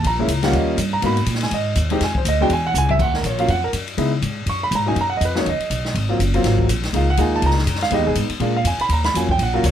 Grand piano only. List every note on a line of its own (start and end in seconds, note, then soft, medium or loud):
0.07 0.42 A#5 loud
0.19 0.28 G#3 medium
0.19 0.28 A#3 medium
0.19 0.29 C#4 medium
0.19 0.29 E4 medium
0.43 0.76 G3 medium
0.43 0.76 A#3 medium
0.43 0.77 C#4 medium
0.43 0.77 F4 medium
0.43 0.54 F#5 medium
0.56 0.78 D#5 medium
0.93 1.03 A#5 loud
1.03 1.16 A#3 medium
1.03 1.16 B3 medium
1.03 1.16 D#4 medium
1.03 1.16 F#4 medium
1.03 1.41 B5 loud
1.43 1.52 G#5 loud
1.54 1.76 D#5 medium
1.91 2.00 G#3 medium
1.91 2.00 C4 medium
1.91 2.01 D#4 medium
1.91 2.01 G4 medium
2.04 2.16 G#5 loud
2.18 2.27 C5 medium
2.28 2.41 D#5 medium
2.41 2.50 G#3 medium
2.41 2.50 B3 medium
2.41 2.50 D4 medium
2.41 2.50 F#4 medium
2.41 2.51 G5 loud
2.53 2.66 G#5 loud
2.67 2.76 F#5 loud
2.78 2.90 G#5 loud
2.91 3.00 E5 loud
3.01 3.14 F#5 medium
3.16 3.25 A#4 medium
3.26 3.39 C#5 medium
3.38 3.48 F#3 medium
3.38 3.48 A#3 medium
3.38 3.48 C#4 medium
3.38 3.49 F4 medium
3.38 3.49 F5 medium
3.50 3.63 F#5 medium
3.64 3.70 A#4 medium
3.98 4.11 G#3 medium
3.98 4.11 B3 medium
3.98 4.11 D#4 medium
3.98 4.11 E4 medium
4.49 4.62 C#6 medium
4.63 4.73 B5 loud
4.75 4.88 A#5 medium
4.86 4.96 F#3 medium
4.86 4.96 A#3 medium
4.86 4.96 C#4 medium
4.86 4.96 D#4 medium
4.86 4.97 G#5 loud
5.01 5.07 A#5 loud
5.10 5.15 F#5 medium
5.17 5.23 D#5 medium
5.25 5.37 B4 medium
5.35 5.45 F#3 medium
5.35 5.45 A#3 medium
5.35 5.45 C#4 medium
5.35 5.45 D#4 medium
5.35 5.47 C#5 medium
5.49 6.17 D#5 medium
6.09 6.19 F#3 medium
6.09 6.19 A#3 medium
6.09 6.19 C4 medium
6.09 6.19 F4 medium
6.34 6.67 F#3 medium
6.34 6.67 A#3 medium
6.34 6.68 C4 medium
6.34 6.68 F4 medium
6.93 7.06 G#3 medium
6.93 7.07 A#3 medium
6.93 7.07 D#4 medium
6.93 7.07 F4 medium
6.93 7.09 F5 medium
7.10 7.19 F#5 loud
7.18 7.54 G#3 medium
7.18 7.54 A#3 medium
7.18 7.55 D#4 medium
7.18 7.55 F4 medium
7.18 7.33 G#5 medium
7.36 7.44 A5 loud
7.46 7.81 A#5 loud
7.83 7.92 F5 loud
7.92 8.28 G#3 medium
7.92 8.28 B3 medium
7.92 8.28 D#4 medium
7.92 8.01 G4 medium
7.92 8.07 D#5 medium
8.02 8.04 G4 medium
8.07 8.13 G#4 medium
8.40 8.53 G#3 medium
8.40 8.54 A#3 medium
8.40 8.54 D4 medium
8.40 8.54 F4 medium
8.56 8.66 F5 medium
8.67 8.80 G#5 medium
8.81 8.91 B5 loud
8.93 9.05 A#5 medium
9.05 9.15 B5 loud
9.15 9.28 F#3 medium
9.15 9.28 A#3 soft
9.15 9.29 C#4 medium
9.15 9.29 F4 medium
9.15 9.30 G#5 medium
9.31 9.40 G5 loud
9.43 9.55 F#5 medium
9.54 9.63 F#3 medium
9.54 9.63 A#3 medium
9.54 9.63 C#4 medium
9.54 9.64 F4 medium
9.54 9.64 A#4 medium
9.66 9.71 C#5 medium